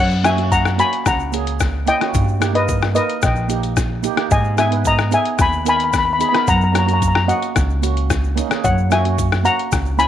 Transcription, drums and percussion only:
0.11 shaker soft
0.24 cross-stick medium
0.24 closed hi-hat medium
0.24 shaker medium
0.38 closed hi-hat medium
0.52 kick medium
0.52 closed hi-hat medium
0.52 shaker medium
0.65 cross-stick medium
0.65 shaker soft
0.79 closed hi-hat medium
0.79 shaker medium
0.93 closed hi-hat medium
1.06 kick loud
1.06 cross-stick medium
1.06 closed hi-hat medium
1.06 shaker medium
1.20 shaker soft
1.33 closed hi-hat medium
1.33 shaker medium
1.47 closed hi-hat medium
1.47 shaker soft
1.60 kick medium
1.60 cross-stick medium
1.60 closed hi-hat medium
1.60 shaker medium
1.87 closed hi-hat medium
1.87 shaker medium
2.01 cross-stick medium
2.01 closed hi-hat medium
2.14 kick loud
2.14 closed hi-hat medium
2.14 shaker medium
2.28 shaker soft
2.42 cross-stick medium
2.42 closed hi-hat medium
2.42 shaker medium
2.55 closed hi-hat medium
2.68 kick medium
2.68 closed hi-hat medium
2.68 shaker medium
2.82 cross-stick medium
2.82 shaker soft
2.95 closed hi-hat medium
2.95 shaker medium
3.10 closed hi-hat medium
3.22 kick loud
3.22 cross-stick loud
3.22 closed hi-hat medium
3.22 shaker loud
3.36 shaker soft
3.50 closed hi-hat medium
3.50 shaker medium
3.63 closed hi-hat medium
3.63 shaker soft
3.77 kick medium
3.77 cross-stick medium
3.77 closed hi-hat medium
3.77 shaker loud
4.03 closed hi-hat medium
4.03 shaker medium
4.17 cross-stick medium
4.17 closed hi-hat medium
4.31 kick loud
4.31 closed hi-hat medium
4.31 shaker loud
4.44 shaker soft
4.58 cross-stick medium
4.58 closed hi-hat medium
4.58 shaker medium
4.72 closed hi-hat medium
4.85 kick medium
4.85 closed hi-hat medium
4.85 shaker loud
4.98 cross-stick medium
4.98 shaker soft
5.12 closed hi-hat medium
5.12 shaker medium
5.25 closed hi-hat medium
5.39 kick loud
5.39 cross-stick medium
5.39 closed hi-hat medium
5.39 shaker medium
5.53 shaker soft
5.66 closed hi-hat loud
5.66 shaker medium
5.80 closed hi-hat medium
5.80 shaker soft
5.93 kick medium
5.93 cross-stick medium
5.93 closed hi-hat medium
5.93 shaker medium
6.20 closed hi-hat medium
6.20 shaker medium
6.34 cross-stick medium
6.34 closed hi-hat medium
6.47 kick loud
6.47 closed hi-hat medium
6.47 shaker loud
6.61 shaker soft
6.75 cross-stick medium
6.75 closed hi-hat medium
6.75 shaker medium
6.89 closed hi-hat medium
6.89 shaker soft
7.02 kick medium
7.02 closed hi-hat medium
7.02 shaker loud
7.15 cross-stick loud
7.29 closed hi-hat medium
7.29 shaker medium
7.42 closed hi-hat medium
7.42 shaker soft
7.56 kick loud
7.56 cross-stick medium
7.56 closed hi-hat medium
7.56 shaker loud
7.70 shaker soft
7.83 closed hi-hat medium
7.83 shaker medium
7.97 closed hi-hat medium
8.10 kick medium
8.10 cross-stick medium
8.10 closed hi-hat medium
8.10 shaker medium
8.24 shaker soft
8.37 closed hi-hat medium
8.37 shaker medium
8.51 cross-stick medium
8.51 closed hi-hat medium
8.51 shaker soft
8.64 kick loud
8.64 closed hi-hat medium
8.64 shaker loud
8.78 shaker soft
8.91 cross-stick medium
8.91 closed hi-hat medium
8.91 shaker medium
9.05 closed hi-hat medium
9.18 kick medium
9.18 closed hi-hat medium
9.18 shaker medium
9.32 cross-stick medium
9.32 shaker soft
9.45 closed hi-hat medium
9.45 shaker medium
9.59 closed hi-hat medium
9.72 kick loud
9.72 cross-stick medium
9.72 closed hi-hat medium
9.72 shaker loud
9.86 shaker soft
9.99 closed hi-hat medium
9.99 shaker medium

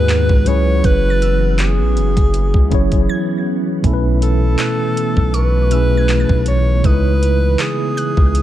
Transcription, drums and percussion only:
0.09 clap loud
0.09 closed hi-hat medium
0.29 kick loud
0.46 closed hi-hat medium
0.84 kick loud
0.84 closed hi-hat medium
1.22 closed hi-hat medium
1.59 clap loud
1.59 closed hi-hat medium
1.97 closed hi-hat soft
2.17 kick loud
2.17 closed hi-hat medium
2.34 closed hi-hat medium
2.54 kick medium
2.71 kick medium
2.71 closed hi-hat soft
2.92 kick medium
2.92 closed hi-hat medium
3.84 kick loud
3.84 closed hi-hat medium
4.22 closed hi-hat medium
4.59 clap loud
4.59 closed hi-hat medium
4.97 closed hi-hat medium
5.17 kick loud
5.34 closed hi-hat medium
5.71 closed hi-hat medium
6.09 clap loud
6.09 closed hi-hat medium
6.29 kick loud
6.46 closed hi-hat medium
6.84 kick loud
6.84 closed hi-hat medium
7.23 closed hi-hat medium
7.59 clap loud
7.59 closed hi-hat medium
7.98 closed hi-hat medium
8.17 kick loud
8.35 closed hi-hat medium

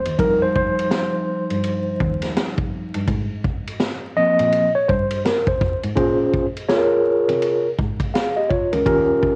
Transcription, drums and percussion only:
0.05 ride medium
0.19 kick loud
0.19 ride medium
0.55 kick medium
0.79 ride medium
0.91 snare loud
0.91 hi-hat pedal soft
0.91 ride medium
1.50 ride medium
1.64 ride medium
2.00 kick medium
2.22 snare soft
2.22 ride medium
2.37 snare loud
2.37 hi-hat pedal medium
2.37 ride medium
2.58 kick loud
2.94 ride medium
3.08 kick loud
3.08 ride medium
3.44 kick medium
3.67 ride medium
3.80 snare loud
3.80 hi-hat pedal soft
3.80 ride medium
4.39 ride medium
4.52 ride medium
4.89 kick loud
5.11 ride medium
5.25 snare loud
5.25 hi-hat pedal medium
5.25 ride medium
5.47 kick loud
5.61 kick loud
5.83 ride medium
5.97 kick loud
5.97 ride medium
6.34 kick medium
6.57 ride medium
6.69 snare loud
6.69 hi-hat pedal soft
6.69 ride medium
7.29 ride medium
7.42 ride medium
7.79 kick loud
8.00 kick medium
8.00 ride medium
8.15 snare loud
8.15 hi-hat pedal medium
8.15 ride medium
8.50 kick medium
8.73 ride medium
8.86 kick loud
8.86 ride medium
9.23 kick medium

